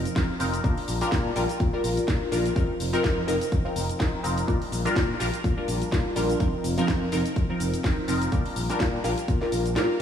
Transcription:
Already playing: analog polysynth F3 C4 D#4 A#4
0.05 muted fingered electric bass stroke, closed hi-hat, shaker
0.16 fingered electric bass F2, analog polysynth F3 C4 D#4 A#4, kick, snare, closed hi-hat, shaker
0.40 fingered electric bass F1, analog polysynth F3 C4 D#4 A#4, open hi-hat, shaker
0.54 closed hi-hat, shaker
0.64 fingered electric bass A#2, analog polysynth G3 D4 F4 A#4, kick, closed hi-hat, shaker
0.78 open hi-hat
0.88 fingered electric bass A#1, open hi-hat, shaker
1.01 analog polysynth G3 D4 F4 A#4, muted fingered electric bass stroke, closed hi-hat, shaker
1.12 fingered electric bass A#2, kick, snare, closed hi-hat, shaker
1.35 fingered electric bass A#1, analog polysynth G3 D4 F4 A#4, open hi-hat, shaker
1.49 closed hi-hat, shaker
1.60 fingered electric bass A#2, kick, closed hi-hat, shaker
1.73 analog polysynth G3 D4 F4 A#4
1.84 fingered electric bass A#1, open hi-hat, shaker
1.97 muted fingered electric bass stroke, closed hi-hat, shaker
2.08 fingered electric bass A#2, analog polysynth G3 D4 F4 A#4, kick, snare, closed hi-hat, shaker
2.31 fingered electric bass A#1, analog polysynth G3 D4 F4 A#4, open hi-hat, shaker
2.46 closed hi-hat, shaker
2.55 fingered electric bass F2, analog polysynth F3 C4 D#4 A#4, kick, closed hi-hat, shaker
2.80 fingered electric bass F1, open hi-hat, shaker
2.93 analog polysynth F3 C4 D#4 A#4, muted fingered electric bass stroke, closed hi-hat, shaker
3.04 fingered electric bass F2, kick, snare, closed hi-hat, shaker
3.27 fingered electric bass F1, analog polysynth F3 C4 D#4 A#4, open hi-hat, shaker
3.41 closed hi-hat, shaker
3.52 fingered electric bass F2, kick, closed hi-hat, shaker
3.65 analog polysynth F3 C4 D#4 A#4
3.76 fingered electric bass F1, open hi-hat, shaker
3.89 muted fingered electric bass stroke, closed hi-hat, shaker
3.99 fingered electric bass F2, analog polysynth F3 C4 D#4 A#4, kick, snare, closed hi-hat, shaker
4.23 fingered electric bass F1, analog polysynth F3 C4 D#4 A#4, open hi-hat, shaker
4.38 closed hi-hat, shaker
4.47 fingered electric bass A#2, analog polysynth G3 D4 F4 A#4, kick, closed hi-hat, shaker
4.62 open hi-hat
4.72 fingered electric bass A#1, open hi-hat, shaker
4.85 analog polysynth G3 D4 F4 A#4, muted fingered electric bass stroke, closed hi-hat, shaker
4.96 fingered electric bass A#2, kick, snare, closed hi-hat, shaker
5.20 fingered electric bass A#1, analog polysynth G3 D4 F4 A#4, open hi-hat, shaker
5.34 closed hi-hat, shaker
5.44 fingered electric bass A#2, kick, closed hi-hat, shaker
5.57 analog polysynth G3 D4 F4 A#4
5.68 fingered electric bass A#1, open hi-hat, shaker
5.82 muted fingered electric bass stroke, closed hi-hat, shaker
5.92 fingered electric bass A#2, analog polysynth G3 D4 F4 A#4, kick, snare, closed hi-hat, shaker
6.16 fingered electric bass A#1, analog polysynth G3 D4 F4 A#4, open hi-hat, shaker
6.30 closed hi-hat, shaker
6.40 fingered electric bass F2, analog polysynth F3 C4 D#4 A#4, kick, closed hi-hat, shaker
6.64 fingered electric bass F1, open hi-hat, shaker
6.78 analog polysynth F3 C4 D#4 A#4, muted fingered electric bass stroke, closed hi-hat, shaker
6.88 fingered electric bass F2, kick, snare, closed hi-hat, shaker
7.12 fingered electric bass F1, analog polysynth F3 C4 D#4 A#4, open hi-hat, shaker
7.26 closed hi-hat, shaker
7.36 fingered electric bass F2, kick, closed hi-hat, shaker
7.49 analog polysynth F3 C4 D#4 A#4
7.60 fingered electric bass F1, open hi-hat, shaker
7.74 muted fingered electric bass stroke, closed hi-hat, shaker
7.84 fingered electric bass F2, analog polysynth F3 C4 D#4 A#4, kick, snare, closed hi-hat, shaker
8.08 fingered electric bass F1, analog polysynth F3 C4 D#4 A#4, open hi-hat, shaker
8.22 closed hi-hat, shaker
8.32 fingered electric bass A#2, analog polysynth G3 D4 F4 A#4, kick, closed hi-hat, shaker
8.46 open hi-hat
8.56 fingered electric bass A#1, open hi-hat, shaker
8.70 analog polysynth G3 D4 F4 A#4, muted fingered electric bass stroke, closed hi-hat, shaker
8.80 fingered electric bass A#2, kick, snare, closed hi-hat, shaker
9.04 fingered electric bass A#1, analog polysynth G3 D4 F4 A#4, open hi-hat, shaker
9.18 closed hi-hat, shaker
9.28 fingered electric bass A#2, kick, closed hi-hat, shaker
9.41 analog polysynth G3 D4 F4 A#4, snare
9.52 fingered electric bass A#1, open hi-hat, shaker
9.66 closed hi-hat, shaker
9.76 fingered electric bass A#2, analog polysynth G3 D4 F4 A#4, snare, closed hi-hat, shaker

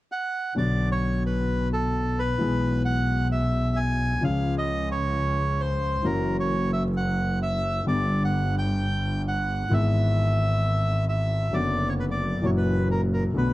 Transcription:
0.12 bandoneon F#5
0.55 double bass B1, grand piano B1 B2 D3 F#3 B3 F#4, bandoneon D5
0.92 bandoneon C#5
1.26 bandoneon B4
1.73 bandoneon A4
2.19 bandoneon B4
2.38 double bass B1, grand piano B1 B2 E3 G#3 B3
2.42 grand piano G#4
2.85 bandoneon F#5
3.32 bandoneon E5
3.76 bandoneon G#5
4.21 double bass C#2, grand piano C#2 C#3 F3 G#3 C#4 G#4, bandoneon F5
4.58 bandoneon D#5
4.92 bandoneon C#5
5.60 bandoneon C5
6.02 double bass F#1, grand piano F#2 E3 F#3 A#3 C#4, bandoneon A#4
6.06 grand piano F#4
6.40 bandoneon C#5
6.73 bandoneon E5
6.97 bandoneon F#5
7.42 bandoneon E5
7.85 grand piano G1 G2 D3 G3 B3 G4, double bass G1, bandoneon D5
8.25 bandoneon F#5
8.58 bandoneon G5
9.28 bandoneon F#5
9.69 grand piano G#1 G#2 E3 G#3 B3 G#4, double bass G#1
9.73 bandoneon E5
11.09 bandoneon E5
11.51 double bass F#1, grand piano F#2 D3 F#3 B3, bandoneon D5
11.55 grand piano F#4
11.89 bandoneon C#5
12.00 bandoneon B4
12.11 bandoneon D5
12.41 double bass F#1, grand piano F#2 A#2 E3 F#3 C#4
12.45 grand piano F#4, bandoneon C#5
12.57 bandoneon B4
12.91 bandoneon A#4
13.14 bandoneon A#4
13.33 grand piano B1 B2 D3 A3 B3 F#4, double bass B1
13.38 bandoneon B4

